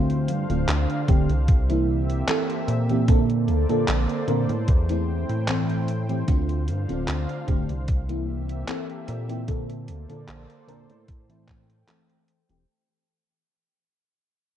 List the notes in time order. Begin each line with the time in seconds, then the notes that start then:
Already playing: D2 D3 A3 C4 D4 F4 C5 F5
0.10 closed hi-hat
0.28 G2, closed hi-hat
0.49 D1 D3 A3 C4 F4, closed hi-hat
0.68 D2, clap, closed hi-hat
0.90 closed hi-hat
1.08 D1 D3 A3 C4 G4, kick, closed hi-hat
1.29 C2, closed hi-hat
1.48 A#3 C4 G4 E5, kick, closed hi-hat
1.69 E3 A#3 C4 E4, closed hi-hat
2.10 closed hi-hat
2.28 E3 A#3 C4 A4, clap, closed hi-hat
2.50 closed hi-hat
2.68 A#2, closed hi-hat
2.89 E3 A#3 C4 G4, closed hi-hat
3.08 D3 A#3 C4 A4 C5 D5, kick, closed hi-hat
3.30 closed hi-hat
3.48 D2, closed hi-hat
3.69 A#2 D3 A#3 C4 A4, closed hi-hat
3.88 A#1, clap, closed hi-hat
4.09 closed hi-hat
4.27 A#2 D3 A#3 C4 A#4, closed hi-hat
4.49 A2, closed hi-hat
4.68 E2 A3 E4 G5, kick, closed hi-hat
4.89 E3 A3 C4 E4, closed hi-hat
5.29 A2, closed hi-hat
5.47 E3 A3 C4 A4, clap, closed hi-hat
5.69 closed hi-hat
5.88 closed hi-hat
6.09 E3 A3 C4 G4, closed hi-hat
6.27 D2 D3 A3 C4 D4 F4 F5, kick, closed hi-hat
6.49 closed hi-hat
6.68 G2, closed hi-hat
6.88 D1 D3 A3 C4 F4, closed hi-hat
7.08 D2, clap, closed hi-hat
7.29 closed hi-hat
7.47 D1 D3 A3 C4 G4, kick, closed hi-hat
7.69 C2, closed hi-hat
7.88 A#3 C4 G4 E5, kick, closed hi-hat
8.09 E3 A#3 C4 E4, closed hi-hat
8.49 closed hi-hat
8.67 E3 A#3 C4 A4, clap, closed hi-hat
8.90 closed hi-hat
9.08 A#2, closed hi-hat
9.29 E3 A#3 C4 G4, closed hi-hat
9.48 D3 A#3 C4 A4 C5 D5, kick, closed hi-hat
9.70 closed hi-hat
9.88 D2, closed hi-hat
10.09 A#2 D3 A#3 C4 A4, closed hi-hat
10.28 A#1, clap, closed hi-hat
10.50 closed hi-hat
10.67 A#2 D3 A#3 C4 A#4, closed hi-hat
10.90 A2, closed hi-hat
11.08 A3 G5, kick, closed hi-hat
11.29 E3 A3 C4 E4, closed hi-hat
11.48 kick, clap, closed hi-hat
11.70 closed hi-hat
11.87 E3 A3 C4 A4, clap, closed hi-hat
12.10 closed hi-hat
12.28 closed hi-hat
12.49 E1 E3 A3 C4 G4, closed hi-hat